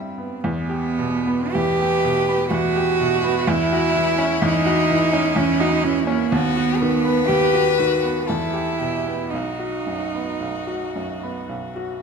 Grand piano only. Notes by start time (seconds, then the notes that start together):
Already playing: G2 G3 B3 E4
0.18 B3
0.44 E2
0.69 G4
0.99 B2
1.27 B3
1.55 E2
1.81 G4
2.04 B2
2.29 B3
2.51 E2
2.76 G4
3.00 B2
3.24 B3
3.47 E2
3.72 F#4
3.96 E3
4.18 C#4
4.42 E2
4.66 F#4
4.90 E3
5.13 C#4
5.36 E2
5.61 F#4
5.84 E3
6.07 C#4
6.32 D#2
6.56 F#4
6.82 D#3
7.05 B3
7.29 D#2
7.53 F#4
7.79 D#3
8.03 B3
8.29 E2
8.53 G4
8.80 B2
9.07 B3
9.33 B1
9.59 F#4
9.86 F#2
10.15 B3
10.40 B1
10.67 F#4
10.95 F#2
11.23 B3
11.49 B1
11.76 F#4